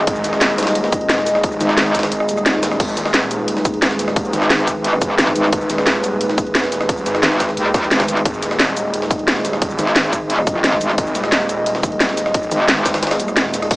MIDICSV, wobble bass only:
0, 0, Header, 1, 2, 480
1, 0, Start_track
1, 0, Key_signature, 5, "minor"
1, 0, Tempo, 340909
1, 101, Time_signature, 4, 2, 24, 8
1, 19374, End_track
2, 0, Start_track
2, 0, Title_t, "Wobble bass"
2, 0, Program_c, 0, 39
2, 2261, Note_on_c, 0, 32, 97
2, 2962, Note_off_c, 0, 32, 0
2, 6101, Note_on_c, 0, 32, 98
2, 7282, Note_off_c, 0, 32, 0
2, 7302, Note_on_c, 0, 32, 100
2, 7523, Note_off_c, 0, 32, 0
2, 7542, Note_on_c, 0, 32, 97
2, 7763, Note_off_c, 0, 32, 0
2, 10181, Note_on_c, 0, 32, 101
2, 10642, Note_off_c, 0, 32, 0
2, 10662, Note_on_c, 0, 39, 96
2, 11123, Note_off_c, 0, 39, 0
2, 11142, Note_on_c, 0, 32, 100
2, 11603, Note_off_c, 0, 32, 0
2, 13782, Note_on_c, 0, 32, 99
2, 14963, Note_off_c, 0, 32, 0
2, 14981, Note_on_c, 0, 32, 101
2, 15202, Note_off_c, 0, 32, 0
2, 15220, Note_on_c, 0, 32, 100
2, 15442, Note_off_c, 0, 32, 0
2, 17621, Note_on_c, 0, 32, 100
2, 18322, Note_off_c, 0, 32, 0
2, 19374, End_track
0, 0, End_of_file